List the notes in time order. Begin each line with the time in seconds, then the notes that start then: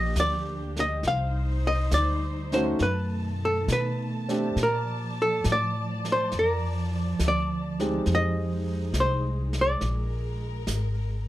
Already playing: A#1 F3 A#3 D4 G4 D#5
0.16 D2, snare, hi-hat pedal
0.20 D5
0.76 D#5, snare
1.03 C2 G3 D#4 C5, brush sweep, snare
1.08 F5
1.67 D#5
1.91 D2 D5, snare, hi-hat pedal
2.52 A3 C#4 D#4 F#4 C5, snare
2.79 F#2 B4, brush sweep, snare
2.83 B2 D#3 A3 A5
3.45 A4
3.68 B2, snare, hi-hat pedal
3.72 B4
4.29 A3 C4 D4 G4, snare
4.56 A#2, brush sweep, snare
4.60 F3 A#4 D5
5.22 A4
5.44 A2, snare, hi-hat pedal
5.52 D5
6.05 snare
6.12 C5
6.32 F2, brush sweep, snare
6.39 A#4
7.19 D2, snare, hi-hat pedal
7.28 D5
7.80 G#3 C4 D#4 G4, snare
8.06 F2 G#3 D#4, brush sweep, snare
8.15 D#5
8.93 C2, snare, hi-hat pedal
9.00 C5
9.53 snare
9.61 D5
9.81 A#1 A#4, brush sweep, snare
10.67 G#1, snare, hi-hat pedal